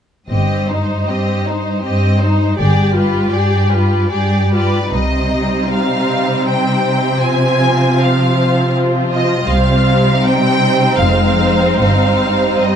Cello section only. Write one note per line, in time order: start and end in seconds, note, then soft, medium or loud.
0.30 0.99 G2 soft
1.09 1.76 G2 soft
1.85 2.50 G2 soft
2.58 3.23 G2 soft
3.33 4.02 G2 soft
4.12 4.83 G2 soft
4.92 9.44 C3 soft
9.48 10.95 C3 medium
10.99 11.77 F2 soft
11.78 12.49 G2 soft
12.58 12.76 G2 soft